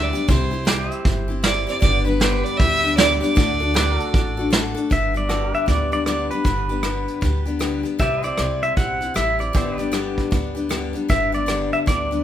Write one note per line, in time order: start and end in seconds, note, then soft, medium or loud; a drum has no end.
0.00 0.11 D2 medium
0.00 0.14 G3 medium
0.00 0.14 B3 medium
0.00 0.13 D4 medium
0.00 0.12 G4 medium
0.00 0.30 D5 medium
0.13 0.28 G3 soft
0.13 0.29 B3 soft
0.13 0.28 D4 soft
0.13 0.28 G4 medium
0.13 closed hi-hat medium
0.28 0.88 C2 medium
0.28 0.53 C3 medium
0.28 0.53 G3 medium
0.28 0.53 C4 medium
0.28 0.52 E4 medium
0.28 0.50 G4 medium
0.28 0.67 C5 medium
0.28 kick loud
0.28 closed hi-hat medium
0.51 0.65 C4 soft
0.51 0.66 E4 medium
0.51 0.66 G4 medium
0.65 1.29 G3 medium
0.65 1.29 C4 medium
0.65 1.29 E4 medium
0.65 1.82 G4 medium
0.65 1.27 G4 medium
0.65 1.82 C5 medium
0.65 snare loud
0.65 closed hi-hat medium
0.69 0.94 D5 medium
0.91 1.83 E5 medium
0.91 closed hi-hat medium
1.05 1.65 G1 medium
1.05 kick loud
1.05 closed hi-hat medium
1.28 1.43 C4 soft
1.28 1.44 E4 medium
1.28 1.43 G4 medium
1.43 1.68 G3 medium
1.43 1.68 C4 medium
1.43 1.67 E4 medium
1.43 1.66 G4 medium
1.43 1.66 D5 medium
1.43 snare loud
1.43 closed hi-hat medium
1.67 1.82 C4 soft
1.67 1.83 E4 soft
1.67 1.82 G4 medium
1.67 1.80 D5 medium
1.67 closed hi-hat medium
1.81 2.42 G1 medium
1.81 2.06 G2 medium
1.81 2.07 D3 medium
1.81 2.07 G3 medium
1.81 2.06 B3 medium
1.81 2.05 D4 medium
1.81 2.04 G4 medium
1.81 2.04 D5 loud
1.81 kick loud
1.81 closed hi-hat medium
2.05 2.19 G3 soft
2.05 2.20 B3 medium
2.05 2.21 D4 soft
2.05 2.20 G4 medium
2.05 2.45 B4 medium
2.20 2.83 G3 medium
2.20 2.84 B3 medium
2.20 2.84 D4 medium
2.20 3.36 G4 medium
2.20 2.82 G4 medium
2.20 2.42 C5 medium
2.20 3.37 D5 medium
2.20 snare loud
2.20 closed hi-hat medium
2.42 3.36 B4 medium
2.42 2.59 D5 loud
2.42 closed hi-hat medium
2.57 3.19 D2 medium
2.57 2.96 E5 loud
2.57 kick loud
2.57 closed hi-hat medium
2.83 2.96 G3 soft
2.83 2.97 B3 soft
2.83 2.98 D4 soft
2.83 2.98 G4 soft
2.96 3.22 G3 medium
2.96 3.22 B3 medium
2.96 3.21 D4 medium
2.96 3.19 G4 medium
2.96 3.20 D5 loud
2.96 snare loud
2.96 closed hi-hat medium
3.21 3.36 G3 soft
3.21 3.36 B3 soft
3.21 3.35 D4 medium
3.21 3.36 G4 medium
3.21 4.48 D5 loud
3.21 closed hi-hat medium
3.35 3.96 D2 medium
3.35 3.60 D3 medium
3.35 3.61 A3 medium
3.35 3.61 D4 medium
3.35 3.61 F#4 medium
3.35 3.59 A4 medium
3.35 kick loud
3.35 closed hi-hat medium
3.60 3.74 D4 soft
3.60 3.75 F#4 medium
3.60 3.75 A4 medium
3.74 4.38 A3 medium
3.74 4.38 D4 medium
3.74 4.38 F#4 medium
3.74 3.95 G4 medium
3.74 4.36 A4 medium
3.74 4.01 B4 medium
3.74 4.91 D5 medium
3.74 snare loud
3.74 closed hi-hat medium
3.95 4.90 F#4 medium
4.00 4.90 A4 medium
4.00 closed hi-hat medium
4.14 4.73 A1 medium
4.14 kick loud
4.14 closed hi-hat medium
4.37 4.51 D4 soft
4.37 4.52 F#4 medium
4.37 4.52 A4 medium
4.50 4.76 A3 medium
4.50 4.77 D4 medium
4.50 4.75 F#4 medium
4.50 4.73 A4 medium
4.50 snare loud
4.50 closed hi-hat medium
4.75 4.91 D4 soft
4.75 4.91 F#4 soft
4.75 4.90 A4 medium
4.75 closed hi-hat medium
4.90 5.51 G1 medium
4.90 5.15 G2 medium
4.90 5.15 D3 medium
4.90 5.15 G3 medium
4.90 5.15 B3 medium
4.90 5.14 D4 medium
4.90 5.13 G4 medium
4.90 5.15 E5 medium
4.90 kick loud
4.90 closed hi-hat medium
5.14 5.28 G3 soft
5.14 5.29 B3 soft
5.14 5.29 D4 soft
5.14 5.29 G4 soft
5.14 5.54 D5 medium
5.14 closed hi-hat medium
5.29 5.68 G2 medium
5.29 5.68 D3 medium
5.29 5.66 G3 medium
5.29 5.67 B3 medium
5.29 5.67 D4 medium
5.29 5.49 F#4 medium
5.29 5.69 G4 medium
5.29 5.55 A4 medium
5.29 7.98 D5 medium
5.29 cross-stick medium
5.29 closed hi-hat medium
5.49 7.97 G4 medium
5.54 7.98 B4 medium
5.54 5.68 E5 medium
5.54 closed hi-hat medium
5.66 6.27 D2 medium
5.66 5.92 G3 soft
5.66 5.92 B3 soft
5.66 5.92 D4 medium
5.66 5.90 G4 medium
5.66 5.92 D5 medium
5.66 kick medium
5.66 closed hi-hat medium
5.92 6.06 G3 soft
5.92 6.07 B3 soft
5.92 6.07 D4 soft
5.92 6.06 G4 soft
5.92 6.05 D5 medium
5.92 closed hi-hat medium
6.06 6.31 G2 medium
6.06 6.32 D3 medium
6.06 6.32 G3 medium
6.06 6.32 B3 medium
6.06 6.31 D4 medium
6.06 6.30 G4 medium
6.06 6.29 D5 medium
6.06 cross-stick medium
6.06 closed hi-hat medium
6.31 6.45 G3 soft
6.31 6.46 B3 soft
6.31 6.46 D4 soft
6.31 6.45 G4 soft
6.31 7.86 B4 medium
6.31 closed hi-hat soft
6.44 7.05 G1 medium
6.44 6.70 G2 medium
6.44 6.70 D3 medium
6.44 6.70 G3 medium
6.44 6.71 B3 medium
6.44 6.70 D4 medium
6.44 6.68 G4 medium
6.44 kick medium
6.44 closed hi-hat medium
6.69 6.83 G3 soft
6.69 6.83 B3 soft
6.69 6.84 D4 soft
6.69 6.84 G4 soft
6.69 closed hi-hat medium
6.83 7.22 G2 medium
6.83 7.23 D3 medium
6.83 7.21 G3 medium
6.83 7.21 B3 medium
6.83 7.22 D4 medium
6.83 7.24 G4 medium
6.83 cross-stick medium
6.83 closed hi-hat medium
7.08 closed hi-hat soft
7.21 7.82 D2 medium
7.21 7.46 G3 medium
7.21 7.47 B3 medium
7.21 7.46 D4 medium
7.21 7.44 G4 medium
7.21 kick medium
7.21 closed hi-hat medium
7.46 7.59 G3 soft
7.46 7.60 B3 soft
7.46 7.60 D4 soft
7.46 7.60 G4 medium
7.46 closed hi-hat medium
7.59 7.85 G2 medium
7.59 7.85 D3 medium
7.59 7.85 G3 medium
7.59 7.84 B3 medium
7.59 7.83 D4 medium
7.59 7.82 G4 medium
7.59 cross-stick loud
7.59 closed hi-hat medium
7.83 7.98 G3 soft
7.83 7.99 B3 soft
7.83 8.00 D4 soft
7.83 7.99 G4 medium
7.83 closed hi-hat medium
7.99 8.30 C2 medium
7.99 8.24 C3 medium
7.99 8.24 G3 medium
7.99 8.25 C4 medium
7.99 8.23 E4 medium
7.99 8.21 G4 medium
7.99 9.54 G4 medium
7.99 8.22 B4 medium
7.99 8.28 D5 medium
7.99 8.24 E5 medium
7.99 kick medium
7.99 closed hi-hat medium
8.22 8.38 E4 soft
8.22 8.38 G4 soft
8.22 9.54 C5 medium
8.22 8.64 D5 medium
8.22 closed hi-hat medium
8.26 8.38 C4 soft
8.26 9.55 E5 medium
8.37 8.72 C2 medium
8.37 8.77 C3 medium
8.37 8.76 G3 medium
8.37 8.77 C4 medium
8.37 8.78 E4 medium
8.37 8.79 G4 medium
8.37 cross-stick loud
8.37 closed hi-hat medium
8.62 8.77 E5 medium
8.62 closed hi-hat medium
8.76 9.10 B1 medium
8.76 9.02 G3 medium
8.76 9.02 C4 soft
8.76 9.02 E4 medium
8.76 8.99 G4 medium
8.76 9.16 F#5 medium
8.76 kick medium
8.76 closed hi-hat medium
9.01 9.14 C4 soft
9.01 9.15 E4 soft
9.01 9.15 G4 soft
9.01 closed hi-hat medium
9.14 9.49 A1 medium
9.14 9.40 C3 medium
9.14 9.40 G3 medium
9.14 9.40 C4 medium
9.14 9.39 E4 medium
9.14 9.38 G4 medium
9.14 9.42 E5 medium
9.14 cross-stick medium
9.14 closed hi-hat medium
9.39 9.54 C4 soft
9.39 9.55 E4 soft
9.39 9.54 G4 soft
9.39 10.91 D5 medium
9.39 closed hi-hat medium
9.53 10.14 G1 medium
9.53 9.79 G2 medium
9.53 9.79 D3 medium
9.53 9.79 G3 medium
9.53 9.79 B3 medium
9.53 9.78 D4 medium
9.53 9.77 G4 medium
9.53 12.24 G4 medium
9.53 9.77 C5 medium
9.53 kick loud
9.53 closed hi-hat medium
9.57 9.82 E5 medium
9.77 9.92 B3 soft
9.77 9.92 D4 soft
9.77 9.93 G4 soft
9.77 12.24 B4 medium
9.77 closed hi-hat medium
9.81 9.91 G3 soft
9.81 12.24 D5 medium
9.92 10.31 G2 medium
9.92 10.32 D3 medium
9.92 10.30 G3 medium
9.92 10.31 B3 medium
9.92 10.32 D4 medium
9.92 10.33 G4 medium
9.92 cross-stick medium
9.92 closed hi-hat medium
10.17 kick medium
10.17 closed hi-hat soft
10.31 10.92 D2 medium
10.31 10.56 G3 medium
10.31 10.56 B3 medium
10.31 10.55 D4 medium
10.31 10.54 G4 medium
10.31 kick loud
10.31 closed hi-hat medium
10.55 10.69 G3 soft
10.55 10.70 B3 soft
10.55 10.69 D4 soft
10.55 10.70 G4 soft
10.55 closed hi-hat medium
10.69 10.95 G2 medium
10.69 10.95 D3 medium
10.69 10.95 G3 medium
10.69 10.94 B3 medium
10.69 10.93 D4 medium
10.69 10.92 G4 medium
10.69 cross-stick loud
10.69 closed hi-hat medium
10.93 11.08 G3 soft
10.93 11.09 B3 soft
10.93 11.09 D4 soft
10.93 11.09 G4 medium
10.93 closed hi-hat medium
11.08 11.69 G1 medium
11.08 11.34 G2 medium
11.08 11.34 D3 medium
11.08 11.34 G3 medium
11.08 11.33 B3 medium
11.08 11.32 D4 medium
11.08 11.31 G4 medium
11.08 11.34 E5 medium
11.08 kick loud
11.08 closed hi-hat medium
11.32 11.47 G3 soft
11.32 11.47 B3 soft
11.32 11.47 D4 soft
11.32 11.48 G4 soft
11.32 11.73 D5 medium
11.32 closed hi-hat medium
11.46 11.86 G2 medium
11.46 11.87 D3 medium
11.46 11.85 G3 medium
11.46 11.86 B3 medium
11.46 11.88 D4 medium
11.46 11.87 G4 medium
11.46 cross-stick medium
11.46 closed hi-hat medium
11.73 11.78 E5 medium
11.73 closed hi-hat medium
11.86 12.24 D2 medium
11.86 12.11 G3 medium
11.86 12.12 B3 medium
11.86 12.11 D4 medium
11.86 12.10 G4 medium
11.86 12.24 D5 medium
11.86 kick loud
11.86 closed hi-hat medium
12.11 12.24 G3 soft
12.11 12.24 B3 soft
12.11 12.24 D4 soft
12.11 12.24 G4 soft
12.11 closed hi-hat medium